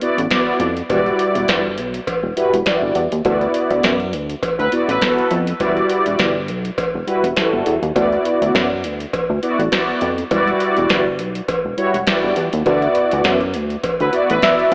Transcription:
0.01 analog polysynth B3 E4 F#4 D5, closed hi-hat
0.18 analog synth bass A1, closed hi-hat
0.31 analog polysynth B3 E4 F#4 D5, kick, snare, closed hi-hat, cowbell
0.60 analog synth bass F2, closed hi-hat
0.77 closed hi-hat
0.89 analog synth bass E1, analog polysynth G3 E4 F#4 D5, kick, closed hi-hat, cowbell
1.06 closed hi-hat
1.19 closed hi-hat
1.35 analog synth bass E1, closed hi-hat
1.48 analog synth bass G1, kick, snare, closed hi-hat, cowbell
1.78 analog synth bass B1, closed hi-hat
1.94 closed hi-hat
2.07 kick, closed hi-hat, cowbell
2.23 analog synth bass E1
2.36 analog polysynth G3 E4 F#4 B4, closed hi-hat
2.53 analog synth bass E1, closed hi-hat
2.66 analog polysynth G3 E4 F#4 D5, kick, snare, closed hi-hat, cowbell
2.82 analog synth bass G1
2.95 analog synth bass E2, closed hi-hat
3.12 analog synth bass D#2, closed hi-hat
3.24 analog synth bass D2, analog polysynth B3 E4 F#4 D5, kick, closed hi-hat, cowbell
3.41 closed hi-hat
3.54 closed hi-hat
3.70 analog synth bass D2, closed hi-hat
3.83 analog synth bass F#2, kick, snare, closed hi-hat, cowbell
4.00 closed hi-hat
4.13 analog synth bass D2, closed hi-hat
4.30 closed hi-hat
4.43 kick, closed hi-hat, cowbell
4.58 analog synth bass D2, horn section F#3 E4 B4, closed hi-hat
4.72 analog polysynth B3 E4 F#4 D5, closed hi-hat
4.88 analog synth bass A1, horn section F#3 E4 B4, closed hi-hat
5.01 analog polysynth B3 E4 F#4 A4, kick, snare, closed hi-hat, cowbell
5.18 closed hi-hat
5.31 analog synth bass F2, closed hi-hat
5.47 closed hi-hat
5.60 analog synth bass E1, analog polysynth G3 E4 F#4 D5, kick, closed hi-hat, cowbell
5.77 closed hi-hat
5.90 closed hi-hat
6.06 analog synth bass E1, closed hi-hat
6.19 analog synth bass G1, kick, snare, closed hi-hat, cowbell
6.48 analog synth bass B1, closed hi-hat
6.65 closed hi-hat
6.78 kick, closed hi-hat, cowbell
6.94 analog synth bass E1
7.07 analog polysynth G3 E4 F#4 B4, closed hi-hat
7.24 analog synth bass E1, closed hi-hat
7.37 analog polysynth G3 E4 F#4 A4, kick, snare, closed hi-hat, cowbell
7.53 analog synth bass G1
7.66 analog synth bass E2, closed hi-hat
7.83 analog synth bass D#2, closed hi-hat
7.95 analog synth bass D2, analog polysynth B3 E4 F#4 D5, kick, closed hi-hat, cowbell
8.12 closed hi-hat
8.25 closed hi-hat
8.41 analog synth bass D2, closed hi-hat
8.55 analog synth bass F#2, kick, snare, closed hi-hat, cowbell
8.84 analog synth bass D2, closed hi-hat
9.00 closed hi-hat
9.13 kick, closed hi-hat, cowbell
9.30 analog synth bass D2
9.42 analog polysynth B3 E4 F#4 D5, closed hi-hat
9.59 analog synth bass A1, closed hi-hat
9.72 analog polysynth B3 E4 F#4 D5, kick, snare, closed hi-hat, cowbell
10.01 analog synth bass F2, closed hi-hat
10.18 closed hi-hat
10.31 analog synth bass E1, analog polysynth G3 E4 F#4 D5, kick, closed hi-hat, cowbell
10.47 closed hi-hat
10.60 closed hi-hat
10.77 analog synth bass E1, closed hi-hat
10.89 analog synth bass G1, kick, snare, closed hi-hat, cowbell
11.19 analog synth bass B1, closed hi-hat
11.35 closed hi-hat
11.48 kick, closed hi-hat, cowbell
11.65 analog synth bass E1
11.77 analog polysynth G3 E4 F#4 C#5, closed hi-hat
11.94 analog synth bass E1, closed hi-hat
12.07 analog polysynth G3 E4 F#4 D5, kick, snare, closed hi-hat, cowbell
12.24 analog synth bass G1
12.36 analog synth bass E2, closed hi-hat
12.53 analog synth bass D#2, closed hi-hat
12.65 analog synth bass D2, analog polysynth B3 E4 F#4 D5, kick, closed hi-hat, cowbell
12.82 closed hi-hat
12.95 closed hi-hat
13.11 analog synth bass D2, closed hi-hat
13.24 analog synth bass F#2, kick, snare, closed hi-hat, cowbell
13.41 closed hi-hat
13.54 analog synth bass D2, closed hi-hat
13.70 closed hi-hat
13.83 kick, closed hi-hat, cowbell
13.99 analog synth bass D2, horn section F#3 E4 B4, closed hi-hat
14.12 analog polysynth B3 E4 F#4 D5, closed hi-hat
14.29 analog synth bass A1, horn section F#3 E4 B4, closed hi-hat
14.42 analog polysynth B3 E4 F#4 D5, analog synth lead E5, kick, snare, closed hi-hat, cowbell
14.59 closed hi-hat

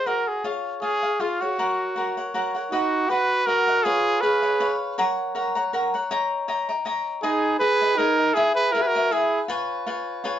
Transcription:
0.06 cavaquinho F#4 G#4 C5 D#5, trumpet A#4
0.28 trumpet G#4
0.44 cavaquinho F4 G#4 C#5 F5
0.82 cavaquinho F4 G#4 C#5 F5, trumpet G#4
1.03 cavaquinho G#4 C#5 F5
1.20 cavaquinho F4 G#4 C#5 F5, trumpet F4
1.41 trumpet F#4, cavaquinho G#4 C#5 F5
1.58 cavaquinho F#4 A#4 C#5 F#5
1.96 cavaquinho F#4 A#4 C#5 F#5
2.17 cavaquinho A#4 C#5 F#5
2.34 cavaquinho F#4 A#4 C#5 F#5
2.55 cavaquinho A#4 C#5 F#5
2.71 trumpet D#4 F#4, cavaquinho F#4 B4 D#5 F#5
3.08 trumpet F#4 B4, cavaquinho F#4 B4 D#5 F#5
3.45 trumpet F#4 A#4, cavaquinho F#4 B4 D#5 F#5
3.68 cavaquinho B4 D#5 F#5
3.84 trumpet F4 G#4, cavaquinho G#4 B4 C#5 F5
4.21 trumpet G#4 B4, cavaquinho G#4 B4 C#5 F5
4.42 cavaquinho B4 C#5 F5
4.60 cavaquinho G#4 B4 C#5 F5
4.98 cavaquinho A#4 C#5 F#5 A#5
5.35 cavaquinho A#4 C#5 F#5 A#5
5.55 cavaquinho C#5 F#5 A#5
5.73 cavaquinho A#4 C#5 F#5 A#5
5.94 cavaquinho C#5 F#5 A#5
6.11 cavaquinho C#5 D#5 G5 A#5
6.48 cavaquinho C#5 D#5 G5 A#5
6.69 cavaquinho D#5 G5 A#5
6.85 cavaquinho C#5 D#5 G5 A#5
7.23 trumpet D#4 G#4, cavaquinho G#4 B4 D#5 G#5
7.60 trumpet G#4 B4, cavaquinho G#4 B4 D#5 G#5
7.81 cavaquinho B4 D#5 G#5
7.96 trumpet D#4 A#4, cavaquinho G#4 B4 D#5 G#5
8.18 cavaquinho B4 D#5 G#5
8.34 trumpet E4 G#4, cavaquinho G#4 B4 E5 G#5
8.54 trumpet G#4 B4
8.72 trumpet E4 A#4, cavaquinho G#4 B4 E5
8.76 cavaquinho G#5
8.81 trumpet G#4 B4
8.86 trumpet F#4 A#4
8.95 cavaquinho B4 E5 G#5
9.11 trumpet E4 G#4, cavaquinho G#4 B4 E5 G#5
9.48 cavaquinho F4 B4 C#5 G#5
9.87 cavaquinho F4 B4 C#5 G#5
10.24 cavaquinho F4 B4 C#5 G#5

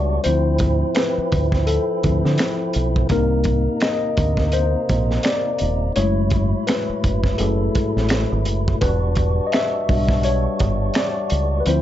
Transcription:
Already playing: fingered electric bass C#2, tonewheel organ G3 D4 F#4, tine electric piano G3 D4 F#4 C#5 D5 E5
0.24 fingered electric bass D2, tonewheel organ F3 C4 E4, tine electric piano F3 C4 E4 C5, closed hi-hat
0.58 kick, closed hi-hat
0.95 tine electric piano B4, finger snap, snare, closed hi-hat
1.18 muted fingered electric bass stroke
1.32 fingered electric bass D2, kick, closed hi-hat
1.52 kick, snare
1.66 tine electric piano A4, closed hi-hat
2.03 fingered electric bass D2, tine electric piano F3 C4 E4, kick, closed hi-hat
2.25 fingered electric bass D3, snare
2.38 finger snap, snare, closed hi-hat
2.73 fingered electric bass B1, closed hi-hat
2.96 kick
3.09 fingered electric bass C2, tonewheel organ C3 A#3 D#4, tine electric piano A#3 C4 D#4 A#4, kick, closed hi-hat
3.44 kick, closed hi-hat
3.80 tine electric piano D#5, finger snap, snare, closed hi-hat
4.17 fingered electric bass D2, kick, closed hi-hat
4.37 kick, snare
4.52 tine electric piano C5, closed hi-hat
4.89 fingered electric bass A#1, kick, closed hi-hat
5.11 snare
5.23 tine electric piano D5, finger snap, snare, closed hi-hat
5.59 fingered electric bass D#1, closed hi-hat
5.95 fingered electric bass F#1, tonewheel organ A2 F#3 E4, tine electric piano G#3 A3 E4 C#5, closed hi-hat
6.30 kick, closed hi-hat
6.67 tine electric piano B4, finger snap, snare, closed hi-hat
6.89 muted fingered electric bass stroke
7.04 fingered electric bass F#1, kick, closed hi-hat
7.24 kick, snare
7.38 fingered electric bass F#1, tine electric piano A3 E4 G#4 A4, closed hi-hat
7.75 muted fingered electric bass stroke, kick, closed hi-hat
7.96 fingered electric bass A1, snare
8.09 finger snap, snare, closed hi-hat
8.32 fingered electric bass G#1
8.45 fingered electric bass F#1, closed hi-hat
8.68 kick
8.81 fingered electric bass E1, tonewheel organ G3 D4 F#4, tine electric piano B4, kick, closed hi-hat
9.15 kick, closed hi-hat
9.47 tine electric piano D#5
9.52 tine electric piano E5, finger snap, snare, closed hi-hat
9.89 fingered electric bass B1, tine electric piano G3 D4 F#4, kick, open hi-hat
10.09 kick, snare
10.23 tine electric piano C#5, closed hi-hat
10.59 fingered electric bass G1, kick, closed hi-hat
10.94 tine electric piano D5, finger snap, snare, closed hi-hat
11.30 fingered electric bass C#2, closed hi-hat
11.60 tine electric piano B4
11.66 fingered electric bass D2, tonewheel organ F3 C4 E4, tine electric piano F3 C4 E4 C5, closed hi-hat

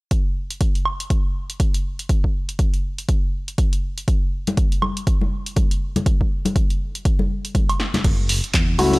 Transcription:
0.11 kick, closed hi-hat
0.51 closed hi-hat
0.61 kick, closed hi-hat
0.75 closed hi-hat
0.85 high woodblock
1.00 closed hi-hat
1.10 kick, closed hi-hat
1.50 closed hi-hat
1.60 kick, closed hi-hat
1.74 closed hi-hat
1.99 closed hi-hat
2.09 kick, closed hi-hat
2.24 kick
2.49 closed hi-hat
2.59 kick, closed hi-hat
2.74 closed hi-hat
2.98 closed hi-hat
3.09 kick, closed hi-hat
3.48 closed hi-hat
3.58 kick, closed hi-hat
3.73 closed hi-hat
3.98 closed hi-hat
4.08 kick, closed hi-hat
4.47 closed hi-hat, high conga
4.57 kick, closed hi-hat
4.72 closed hi-hat
4.82 high conga, high woodblock
4.97 closed hi-hat
5.07 kick, closed hi-hat
5.21 high conga
5.46 closed hi-hat
5.56 kick, closed hi-hat, high conga
5.71 closed hi-hat
5.96 closed hi-hat, high conga, low conga
6.06 kick, closed hi-hat
6.21 kick
6.45 closed hi-hat, high conga
6.56 kick, closed hi-hat
6.70 closed hi-hat
6.95 closed hi-hat
7.05 kick, closed hi-hat
7.19 high conga
7.45 closed hi-hat
7.55 kick, closed hi-hat, high conga
7.69 closed hi-hat, high woodblock
7.80 snare
7.94 snare, closed hi-hat, high conga, low conga
8.04 fingered electric bass F#1, kick, closed hi-hat, crash
8.29 open hi-hat
8.44 closed hi-hat
8.54 fingered electric bass E2, kick, clap, closed hi-hat
8.78 fingered electric bass C#2, felt piano F#3 A3 C#4 E4 F#4, open hi-hat, high conga, high woodblock
8.93 open hi-hat, muted conga

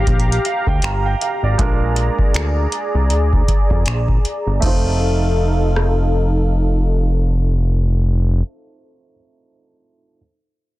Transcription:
Already playing: grand piano G3 A#3 D4 F4 A#4, analog synth pad G4 F5 A#5
0.07 analog synth bass A#1, kick, closed hi-hat
0.20 closed hi-hat
0.32 closed hi-hat
0.45 grand piano F5, closed hi-hat
0.67 analog synth bass D2, grand piano G5, kick
0.82 analog synth bass G1, grand piano A#5, finger snap, closed hi-hat
1.06 grand piano G5
1.21 grand piano F5, closed hi-hat
1.43 analog synth bass G#1, grand piano D5
1.58 analog synth bass A#1, grand piano G#3 A#3 D4 F4 A#4, analog synth pad G#4 D5, kick, closed hi-hat
1.96 closed hi-hat
2.19 kick
2.34 analog synth bass D2, finger snap, closed hi-hat
2.72 closed hi-hat
2.95 analog synth bass C2
3.10 analog synth bass D2, closed hi-hat
3.33 kick
3.48 kick, closed hi-hat
3.70 analog synth bass F2, kick
3.86 analog synth bass A#1, finger snap, closed hi-hat
4.08 kick
4.25 closed hi-hat
4.47 analog synth bass G1
4.60 analog synth bass F1, grand piano A3 C4 D#4, analog synth pad D#4 A4 F5, kick, crash
4.66 grand piano F4 C5
5.76 cross-stick

